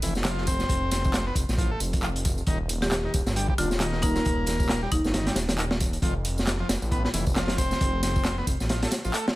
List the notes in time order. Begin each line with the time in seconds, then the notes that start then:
0.02 F1 E3, closed hi-hat, ride, tambourine
0.15 snare, tambourine
0.25 F3, snare, clap, closed hi-hat, tambourine
0.38 snare
0.47 C4, kick, closed hi-hat, ride, tambourine
0.59 snare, tambourine
0.69 F1, kick, closed hi-hat, tambourine
0.91 C4, snare, closed hi-hat, ride, tambourine
1.04 kick, tambourine
1.14 snare, clap, closed hi-hat, tambourine
1.27 B3
1.35 F1, kick, closed hi-hat, ride, tambourine
1.49 A1, snare, tambourine
1.58 F3, kick, closed hi-hat, tambourine
1.71 A3
1.80 F1, closed hi-hat, ride, tambourine
1.93 kick, closed hi-hat, tambourine
2.03 F3, clap, tambourine
2.16 closed hi-hat
2.25 kick, closed hi-hat, ride, tambourine
2.38 tambourine
2.47 D#1 D#3, kick, closed hi-hat, tambourine
2.69 closed hi-hat, ride, tambourine
2.82 G4, snare, tambourine
2.91 G4, snare, clap, closed hi-hat, tambourine
3.05 D#3
3.14 D#1, kick, closed hi-hat, ride, tambourine
3.26 G1, snare, tambourine
3.36 G3, closed hi-hat, tambourine
3.48 G3, kick
3.58 D#1 D3 F4, closed hi-hat, ride, tambourine
3.71 snare, tambourine
3.80 D#3, snare, clap, closed hi-hat, tambourine
3.92 snare
4.02 A#3 D#4, kick, closed hi-hat, ride, tambourine
4.15 snare, tambourine
4.25 D#1, kick, closed hi-hat, tambourine
4.46 A#3, snare, closed hi-hat, ride, tambourine
4.60 kick, tambourine
4.69 snare, clap, closed hi-hat, tambourine
4.83 G3
4.92 D#1 D#4, kick, closed hi-hat, ride, tambourine
5.04 G1, snare, tambourine
5.14 D#3, snare, closed hi-hat, tambourine
5.27 G3, snare, closed hi-hat
5.36 D#1, snare, closed hi-hat, ride, tambourine
5.49 snare, closed hi-hat, tambourine
5.58 D#3, clap, closed hi-hat, tambourine
5.71 snare
5.80 kick, closed hi-hat, ride, tambourine
5.93 closed hi-hat, tambourine
6.02 F1 F3, kick, closed hi-hat, tambourine
6.25 closed hi-hat, ride, tambourine
6.38 snare, tambourine
6.47 snare, clap, closed hi-hat, tambourine
6.60 F3
6.69 F1, snare, closed hi-hat, ride, tambourine
6.82 A1, tambourine
6.91 B3, kick, closed hi-hat, tambourine
7.04 B3, snare
7.14 F1 E3, closed hi-hat, ride, tambourine
7.27 kick, tambourine
7.36 F3, snare, clap, closed hi-hat, tambourine
7.48 snare, closed hi-hat
7.58 C4, kick, closed hi-hat, ride, tambourine
7.71 snare, tambourine
7.81 F1, kick, closed hi-hat, tambourine
8.03 C4, snare, closed hi-hat, ride, tambourine
8.16 kick, tambourine
8.25 snare, clap, closed hi-hat, tambourine
8.38 B3
8.47 F1, kick, closed hi-hat, ride, tambourine
8.60 A1, snare, tambourine
8.69 F3, snare, closed hi-hat, tambourine
8.82 A3, snare, closed hi-hat
8.91 snare, closed hi-hat, ride, tambourine
9.05 A1 F3, tambourine
9.14 A3, clap, closed hi-hat, tambourine
9.28 snare